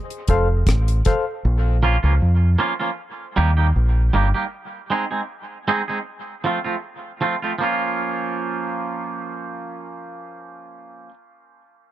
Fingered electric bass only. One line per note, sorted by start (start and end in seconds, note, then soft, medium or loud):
0.29 0.62 F1 medium
0.67 1.01 A1 medium
1.45 1.96 A#1 loud
2.04 2.19 C#2 medium
2.22 2.55 F2 medium
3.38 3.71 D#2 medium
3.76 4.09 A#1 medium
4.14 4.32 G1 medium